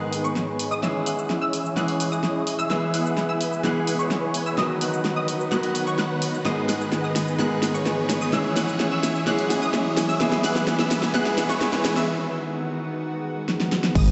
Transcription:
Already playing: G#2 D#3 G#3 B3 D#4 G#4 B4 F#5 F#6, riser
0.13 open hi-hat, shaker
0.24 B3 D#4 G#4 B4 C#5 C#6, shaker
0.36 snare, shaker
0.59 open hi-hat, shaker
0.71 B3 D#4 G#4 B4 D#5 D#6, shaker
0.82 E3 G#3 C#4 E4 G#4 C#5 E5 E6, snare, shaker
1.06 C#4 E4 G#4 C#5 F#5 F#6, open hi-hat, shaker
1.19 shaker
1.30 snare, shaker
1.41 C#4 E4 G#4 C#5 E5 E6
1.53 open hi-hat, shaker
1.65 shaker
1.76 E3 G#3 C#4 E4 G#4 C#5 F#5 F#6, snare, shaker
1.88 open hi-hat
2.00 open hi-hat, shaker
2.12 C#4 E4 G#4 C#5 D#5 D#6, shaker
2.23 snare, shaker
2.47 open hi-hat, shaker
2.59 C#4 E4 G#4 C#5 E5 E6, shaker
2.69 E3 G#3 B3 E4 G#4 B4 E5 E6, snare, shaker
2.94 B3 E4 G#4 B4 F#5 F#6, open hi-hat, shaker
3.06 shaker
3.17 snare, shaker
3.29 B3 E4 G#4 B4 E5 E6
3.41 open hi-hat, shaker
3.53 shaker
3.63 E3 G#3 B3 E4 G#4 B4 F#5 F#6, snare, shaker
3.87 open hi-hat, shaker
3.99 B3 E4 G#4 B4 C#5 C#6, shaker
4.11 snare, shaker
4.34 open hi-hat, shaker
4.46 B3 E4 G#4 B4 E5 E6, shaker
4.57 D#3 F#3 B3 D#4 F#4 B4 D#5 D#6, snare, shaker
4.81 B3 D#4 F#4 B4 F#5 F#6, open hi-hat, shaker
4.93 shaker
5.05 snare, shaker
5.16 B3 D#4 F#4 B4 D#5 D#6
5.28 open hi-hat, shaker
5.40 shaker
5.51 D#3 F#3 B3 D#4 F#4 B4 F#5 F#6, snare, shaker
5.63 open hi-hat
5.75 open hi-hat, shaker
5.87 B3 D#4 F#4 B4 C#5 C#6, shaker
5.98 B3 D#4 F#4 B4 F#5 F#6, snare, shaker
6.22 open hi-hat, shaker
6.34 shaker
6.44 G#2 D#3 G#3 B3 D#4 G#4 B4 D#5 D#6, snare, shaker
6.69 B3 D#4 G#4 B4 F#5 F#6, snare, open hi-hat, shaker
6.81 shaker
6.92 snare, shaker
7.04 B3 D#4 G#4 B4 D#5 D#6
7.16 snare, open hi-hat, shaker
7.28 shaker
7.38 G#2 D#3 G#3 B3 D#4 G#4 B4 F#5 F#6, snare, shaker
7.63 snare, open hi-hat, shaker
7.74 B3 D#4 G#4 B4 C#5 C#6, shaker
7.86 snare, shaker
8.10 snare, open hi-hat, shaker
8.21 B3 D#4 G#4 B4 D#5 D#6, shaker
8.32 E3 G#3 C#4 E4 G#4 C#5 E5 E6, snare, shaker
8.56 C#4 E4 G#4 C#5 F#5 F#6, snare, open hi-hat, shaker
8.69 shaker
8.80 snare, shaker
8.91 C#4 E4 G#4 C#5 E5 E6
9.03 snare, open hi-hat, shaker
9.16 shaker
9.26 E3 G#3 C#4 E4 G#4 C#5 F#5 F#6, snare, shaker
9.39 open hi-hat
9.50 snare, open hi-hat, shaker
9.62 C#4 E4 G#4 C#5 D#5 D#6, shaker
9.74 snare, shaker
9.97 snare, open hi-hat, shaker
10.09 C#4 E4 G#4 C#5 E5 E6, shaker
10.19 E3 G#3 B3 E4 G#4 B4 E5 E6, snare, shaker
10.32 snare
10.44 B3 E4 G#4 B4 F#5 F#6, snare, open hi-hat, shaker
10.56 snare, shaker
10.67 snare, shaker
10.79 B3 E4 G#4 B4 E5 E6, snare
10.91 snare, open hi-hat, shaker
11.03 snare, shaker
11.13 E3 G#3 B3 E4 G#4 B4 F#5 F#6, snare, shaker
11.26 snare
11.38 snare, open hi-hat, shaker
11.49 B3 E4 G#4 B4 C#5 C#6, snare, shaker
11.61 snare, shaker
11.73 snare
11.85 snare, open hi-hat, shaker
11.96 B3 E4 G#4 B4 E5 E6, snare, shaker
12.08 D#3 B3 F#4
13.02 swell
13.49 snare
13.60 snare
13.72 snare
13.84 snare
13.95 G#1 B2 G#3 B3 D#4 G#4 B4 D#5 D#6, kick, crash, impact, shaker

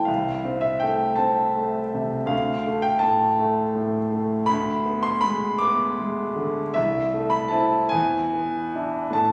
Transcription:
Already playing: E3 A3 C4 G5 A5 B5 C6
0.05 C2 F5
0.45 C4
0.61 E5
0.80 A3 G5
1.16 C4 A5
1.56 A3
1.94 C3
2.26 D2 F5
2.67 A3
2.82 G5
2.99 A2 A5
3.39 A3
3.75 A2
4.12 A3
4.46 D2 B5
4.86 B3
5.03 C6
5.21 G#3 B5
5.58 B3 D6
5.99 G#3
6.36 D3
6.74 C2 E5
7.13 A3
7.30 B5
7.48 C4 E4 A5
7.89 E2 G#5
8.33 B3
8.75 D4 E4
9.10 A2 A5

